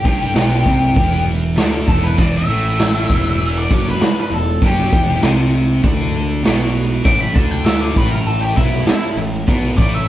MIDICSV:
0, 0, Header, 1, 7, 480
1, 0, Start_track
1, 0, Key_signature, 1, "minor"
1, 0, Tempo, 608519
1, 1716, Time_signature, 4, 2, 24, 8
1, 7952, End_track
2, 0, Start_track
2, 0, Title_t, "Lead electric guitar"
2, 0, Program_c, 0, 29
2, 0, Note_on_c, 0, 67, 95
2, 981, Note_off_c, 0, 67, 0
2, 1484, Note_on_c, 0, 69, 102
2, 1596, Note_off_c, 0, 69, 0
2, 1605, Note_on_c, 0, 71, 85
2, 1730, Note_off_c, 0, 71, 0
2, 1730, Note_on_c, 0, 74, 101
2, 1839, Note_off_c, 0, 74, 0
2, 1871, Note_on_c, 0, 76, 104
2, 2785, Note_off_c, 0, 76, 0
2, 2823, Note_on_c, 0, 74, 100
2, 3043, Note_off_c, 0, 74, 0
2, 3077, Note_on_c, 0, 71, 80
2, 3290, Note_off_c, 0, 71, 0
2, 3317, Note_on_c, 0, 71, 81
2, 3414, Note_off_c, 0, 71, 0
2, 3423, Note_on_c, 0, 69, 86
2, 3643, Note_off_c, 0, 69, 0
2, 3676, Note_on_c, 0, 67, 106
2, 4123, Note_off_c, 0, 67, 0
2, 5560, Note_on_c, 0, 86, 92
2, 5684, Note_off_c, 0, 86, 0
2, 5684, Note_on_c, 0, 83, 90
2, 5795, Note_off_c, 0, 83, 0
2, 5795, Note_on_c, 0, 81, 102
2, 5925, Note_off_c, 0, 81, 0
2, 5925, Note_on_c, 0, 79, 92
2, 6032, Note_on_c, 0, 76, 96
2, 6037, Note_off_c, 0, 79, 0
2, 6160, Note_off_c, 0, 76, 0
2, 6160, Note_on_c, 0, 74, 102
2, 6289, Note_off_c, 0, 74, 0
2, 6289, Note_on_c, 0, 71, 99
2, 6392, Note_on_c, 0, 70, 85
2, 6399, Note_off_c, 0, 71, 0
2, 6518, Note_off_c, 0, 70, 0
2, 6518, Note_on_c, 0, 69, 108
2, 6634, Note_off_c, 0, 69, 0
2, 6637, Note_on_c, 0, 67, 106
2, 6753, Note_off_c, 0, 67, 0
2, 6753, Note_on_c, 0, 64, 92
2, 6988, Note_off_c, 0, 64, 0
2, 6996, Note_on_c, 0, 64, 100
2, 7229, Note_off_c, 0, 64, 0
2, 7707, Note_on_c, 0, 74, 101
2, 7828, Note_off_c, 0, 74, 0
2, 7843, Note_on_c, 0, 76, 81
2, 7952, Note_off_c, 0, 76, 0
2, 7952, End_track
3, 0, Start_track
3, 0, Title_t, "Distorted electric guitar"
3, 0, Program_c, 1, 30
3, 31, Note_on_c, 1, 43, 88
3, 41, Note_on_c, 1, 55, 91
3, 266, Note_off_c, 1, 43, 0
3, 269, Note_on_c, 1, 47, 88
3, 271, Note_off_c, 1, 55, 0
3, 280, Note_on_c, 1, 59, 103
3, 505, Note_off_c, 1, 47, 0
3, 510, Note_off_c, 1, 59, 0
3, 518, Note_on_c, 1, 48, 86
3, 527, Note_on_c, 1, 60, 93
3, 749, Note_off_c, 1, 48, 0
3, 749, Note_on_c, 1, 40, 89
3, 754, Note_off_c, 1, 60, 0
3, 763, Note_on_c, 1, 52, 90
3, 1225, Note_off_c, 1, 40, 0
3, 1232, Note_off_c, 1, 52, 0
3, 1235, Note_on_c, 1, 50, 82
3, 1247, Note_on_c, 1, 62, 96
3, 1468, Note_off_c, 1, 50, 0
3, 1474, Note_off_c, 1, 62, 0
3, 1482, Note_on_c, 1, 40, 96
3, 1490, Note_on_c, 1, 52, 104
3, 1712, Note_off_c, 1, 40, 0
3, 1716, Note_off_c, 1, 52, 0
3, 1723, Note_on_c, 1, 40, 107
3, 1733, Note_on_c, 1, 52, 110
3, 1952, Note_off_c, 1, 40, 0
3, 1957, Note_off_c, 1, 52, 0
3, 1963, Note_on_c, 1, 45, 76
3, 1976, Note_on_c, 1, 57, 97
3, 2432, Note_off_c, 1, 45, 0
3, 2439, Note_off_c, 1, 57, 0
3, 2441, Note_on_c, 1, 40, 77
3, 2453, Note_on_c, 1, 52, 80
3, 2911, Note_off_c, 1, 40, 0
3, 2917, Note_off_c, 1, 52, 0
3, 2917, Note_on_c, 1, 42, 86
3, 2929, Note_on_c, 1, 54, 106
3, 3149, Note_off_c, 1, 42, 0
3, 3155, Note_off_c, 1, 54, 0
3, 3403, Note_on_c, 1, 40, 77
3, 3592, Note_off_c, 1, 40, 0
3, 3645, Note_on_c, 1, 42, 99
3, 3655, Note_on_c, 1, 54, 119
3, 3874, Note_off_c, 1, 42, 0
3, 3878, Note_off_c, 1, 54, 0
3, 3883, Note_on_c, 1, 40, 96
3, 3891, Note_on_c, 1, 52, 105
3, 4113, Note_off_c, 1, 40, 0
3, 4117, Note_off_c, 1, 52, 0
3, 4119, Note_on_c, 1, 48, 83
3, 4129, Note_on_c, 1, 60, 93
3, 4590, Note_off_c, 1, 48, 0
3, 4593, Note_on_c, 1, 50, 100
3, 4596, Note_off_c, 1, 60, 0
3, 4605, Note_on_c, 1, 62, 94
3, 5067, Note_off_c, 1, 50, 0
3, 5074, Note_off_c, 1, 62, 0
3, 5080, Note_on_c, 1, 47, 86
3, 5091, Note_on_c, 1, 59, 96
3, 5551, Note_off_c, 1, 47, 0
3, 5555, Note_on_c, 1, 45, 94
3, 5556, Note_off_c, 1, 59, 0
3, 5563, Note_on_c, 1, 57, 105
3, 5787, Note_off_c, 1, 45, 0
3, 5790, Note_on_c, 1, 50, 82
3, 5793, Note_off_c, 1, 57, 0
3, 5801, Note_on_c, 1, 62, 92
3, 6266, Note_off_c, 1, 50, 0
3, 6272, Note_off_c, 1, 62, 0
3, 6283, Note_on_c, 1, 45, 91
3, 6291, Note_on_c, 1, 57, 91
3, 6746, Note_off_c, 1, 45, 0
3, 6749, Note_on_c, 1, 47, 101
3, 6757, Note_off_c, 1, 57, 0
3, 6761, Note_on_c, 1, 59, 100
3, 6986, Note_off_c, 1, 47, 0
3, 6992, Note_off_c, 1, 59, 0
3, 7237, Note_on_c, 1, 45, 75
3, 7429, Note_off_c, 1, 45, 0
3, 7475, Note_on_c, 1, 47, 99
3, 7485, Note_on_c, 1, 59, 111
3, 7708, Note_off_c, 1, 47, 0
3, 7712, Note_on_c, 1, 45, 87
3, 7714, Note_off_c, 1, 59, 0
3, 7723, Note_on_c, 1, 57, 91
3, 7943, Note_off_c, 1, 45, 0
3, 7952, Note_off_c, 1, 57, 0
3, 7952, End_track
4, 0, Start_track
4, 0, Title_t, "Picked electric bass"
4, 0, Program_c, 2, 34
4, 34, Note_on_c, 2, 31, 95
4, 257, Note_off_c, 2, 31, 0
4, 269, Note_on_c, 2, 35, 88
4, 495, Note_off_c, 2, 35, 0
4, 520, Note_on_c, 2, 36, 92
4, 741, Note_off_c, 2, 36, 0
4, 761, Note_on_c, 2, 28, 97
4, 1207, Note_off_c, 2, 28, 0
4, 1228, Note_on_c, 2, 38, 84
4, 1455, Note_off_c, 2, 38, 0
4, 1479, Note_on_c, 2, 28, 92
4, 1700, Note_off_c, 2, 28, 0
4, 1723, Note_on_c, 2, 28, 96
4, 1942, Note_off_c, 2, 28, 0
4, 1949, Note_on_c, 2, 33, 95
4, 2401, Note_off_c, 2, 33, 0
4, 2441, Note_on_c, 2, 28, 100
4, 2887, Note_off_c, 2, 28, 0
4, 2921, Note_on_c, 2, 30, 102
4, 3139, Note_off_c, 2, 30, 0
4, 3389, Note_on_c, 2, 28, 86
4, 3615, Note_off_c, 2, 28, 0
4, 3639, Note_on_c, 2, 30, 99
4, 3861, Note_off_c, 2, 30, 0
4, 3884, Note_on_c, 2, 28, 92
4, 4104, Note_off_c, 2, 28, 0
4, 4110, Note_on_c, 2, 36, 85
4, 4562, Note_off_c, 2, 36, 0
4, 4605, Note_on_c, 2, 38, 105
4, 5049, Note_off_c, 2, 38, 0
4, 5069, Note_on_c, 2, 35, 93
4, 5521, Note_off_c, 2, 35, 0
4, 5562, Note_on_c, 2, 33, 110
4, 5783, Note_off_c, 2, 33, 0
4, 5800, Note_on_c, 2, 38, 98
4, 6247, Note_off_c, 2, 38, 0
4, 6280, Note_on_c, 2, 33, 101
4, 6727, Note_off_c, 2, 33, 0
4, 6759, Note_on_c, 2, 35, 99
4, 6981, Note_off_c, 2, 35, 0
4, 7219, Note_on_c, 2, 33, 83
4, 7451, Note_off_c, 2, 33, 0
4, 7477, Note_on_c, 2, 35, 111
4, 7700, Note_off_c, 2, 35, 0
4, 7710, Note_on_c, 2, 33, 97
4, 7937, Note_off_c, 2, 33, 0
4, 7952, End_track
5, 0, Start_track
5, 0, Title_t, "Muted distorted electric guitar strokes"
5, 3166, Note_on_c, 9, 29, 57
5, 3244, Note_off_c, 9, 29, 0
5, 6997, Note_on_c, 9, 29, 59
5, 7076, Note_off_c, 9, 29, 0
5, 7952, End_track
6, 0, Start_track
6, 0, Title_t, "Muted picked electric bass strokes"
6, 3143, Note_on_c, 9, 29, 40
6, 3222, Note_off_c, 9, 29, 0
6, 6989, Note_on_c, 9, 29, 40
6, 7068, Note_off_c, 9, 29, 0
6, 7952, End_track
7, 0, Start_track
7, 0, Title_t, "Drums"
7, 35, Note_on_c, 9, 46, 59
7, 39, Note_on_c, 9, 36, 103
7, 114, Note_off_c, 9, 46, 0
7, 118, Note_off_c, 9, 36, 0
7, 279, Note_on_c, 9, 46, 79
7, 283, Note_on_c, 9, 38, 106
7, 357, Note_off_c, 9, 46, 0
7, 362, Note_off_c, 9, 38, 0
7, 520, Note_on_c, 9, 36, 88
7, 521, Note_on_c, 9, 46, 51
7, 599, Note_off_c, 9, 36, 0
7, 600, Note_off_c, 9, 46, 0
7, 760, Note_on_c, 9, 36, 107
7, 763, Note_on_c, 9, 46, 84
7, 839, Note_off_c, 9, 36, 0
7, 841, Note_off_c, 9, 46, 0
7, 999, Note_on_c, 9, 46, 57
7, 1078, Note_off_c, 9, 46, 0
7, 1240, Note_on_c, 9, 46, 84
7, 1244, Note_on_c, 9, 38, 107
7, 1318, Note_off_c, 9, 46, 0
7, 1323, Note_off_c, 9, 38, 0
7, 1481, Note_on_c, 9, 36, 101
7, 1483, Note_on_c, 9, 46, 58
7, 1560, Note_off_c, 9, 36, 0
7, 1562, Note_off_c, 9, 46, 0
7, 1722, Note_on_c, 9, 36, 110
7, 1722, Note_on_c, 9, 49, 111
7, 1800, Note_off_c, 9, 49, 0
7, 1801, Note_off_c, 9, 36, 0
7, 1971, Note_on_c, 9, 46, 68
7, 2050, Note_off_c, 9, 46, 0
7, 2202, Note_on_c, 9, 46, 87
7, 2207, Note_on_c, 9, 38, 114
7, 2281, Note_off_c, 9, 46, 0
7, 2286, Note_off_c, 9, 38, 0
7, 2443, Note_on_c, 9, 36, 89
7, 2450, Note_on_c, 9, 46, 59
7, 2522, Note_off_c, 9, 36, 0
7, 2529, Note_off_c, 9, 46, 0
7, 2692, Note_on_c, 9, 46, 84
7, 2771, Note_off_c, 9, 46, 0
7, 2924, Note_on_c, 9, 36, 99
7, 2927, Note_on_c, 9, 46, 61
7, 3003, Note_off_c, 9, 36, 0
7, 3006, Note_off_c, 9, 46, 0
7, 3046, Note_on_c, 9, 38, 35
7, 3125, Note_off_c, 9, 38, 0
7, 3162, Note_on_c, 9, 46, 81
7, 3167, Note_on_c, 9, 38, 113
7, 3241, Note_off_c, 9, 46, 0
7, 3245, Note_off_c, 9, 38, 0
7, 3399, Note_on_c, 9, 46, 58
7, 3478, Note_off_c, 9, 46, 0
7, 3644, Note_on_c, 9, 36, 112
7, 3644, Note_on_c, 9, 46, 79
7, 3723, Note_off_c, 9, 36, 0
7, 3723, Note_off_c, 9, 46, 0
7, 3885, Note_on_c, 9, 36, 107
7, 3888, Note_on_c, 9, 46, 62
7, 3964, Note_off_c, 9, 36, 0
7, 3967, Note_off_c, 9, 46, 0
7, 4120, Note_on_c, 9, 46, 73
7, 4124, Note_on_c, 9, 38, 111
7, 4199, Note_off_c, 9, 46, 0
7, 4203, Note_off_c, 9, 38, 0
7, 4359, Note_on_c, 9, 46, 53
7, 4438, Note_off_c, 9, 46, 0
7, 4605, Note_on_c, 9, 36, 108
7, 4605, Note_on_c, 9, 46, 78
7, 4684, Note_off_c, 9, 36, 0
7, 4684, Note_off_c, 9, 46, 0
7, 4840, Note_on_c, 9, 46, 61
7, 4919, Note_off_c, 9, 46, 0
7, 5086, Note_on_c, 9, 46, 85
7, 5091, Note_on_c, 9, 38, 117
7, 5165, Note_off_c, 9, 46, 0
7, 5170, Note_off_c, 9, 38, 0
7, 5320, Note_on_c, 9, 46, 64
7, 5399, Note_off_c, 9, 46, 0
7, 5563, Note_on_c, 9, 36, 116
7, 5567, Note_on_c, 9, 46, 93
7, 5642, Note_off_c, 9, 36, 0
7, 5645, Note_off_c, 9, 46, 0
7, 5801, Note_on_c, 9, 46, 62
7, 5803, Note_on_c, 9, 36, 109
7, 5880, Note_off_c, 9, 46, 0
7, 5882, Note_off_c, 9, 36, 0
7, 6039, Note_on_c, 9, 46, 91
7, 6044, Note_on_c, 9, 38, 118
7, 6118, Note_off_c, 9, 46, 0
7, 6123, Note_off_c, 9, 38, 0
7, 6282, Note_on_c, 9, 36, 103
7, 6284, Note_on_c, 9, 46, 64
7, 6361, Note_off_c, 9, 36, 0
7, 6363, Note_off_c, 9, 46, 0
7, 6521, Note_on_c, 9, 46, 84
7, 6600, Note_off_c, 9, 46, 0
7, 6762, Note_on_c, 9, 36, 109
7, 6763, Note_on_c, 9, 46, 60
7, 6841, Note_off_c, 9, 36, 0
7, 6842, Note_off_c, 9, 46, 0
7, 6885, Note_on_c, 9, 38, 35
7, 6964, Note_off_c, 9, 38, 0
7, 6993, Note_on_c, 9, 46, 84
7, 6998, Note_on_c, 9, 38, 111
7, 7072, Note_off_c, 9, 46, 0
7, 7077, Note_off_c, 9, 38, 0
7, 7234, Note_on_c, 9, 46, 60
7, 7313, Note_off_c, 9, 46, 0
7, 7469, Note_on_c, 9, 46, 86
7, 7477, Note_on_c, 9, 36, 103
7, 7548, Note_off_c, 9, 46, 0
7, 7556, Note_off_c, 9, 36, 0
7, 7711, Note_on_c, 9, 46, 61
7, 7716, Note_on_c, 9, 36, 105
7, 7790, Note_off_c, 9, 46, 0
7, 7795, Note_off_c, 9, 36, 0
7, 7952, End_track
0, 0, End_of_file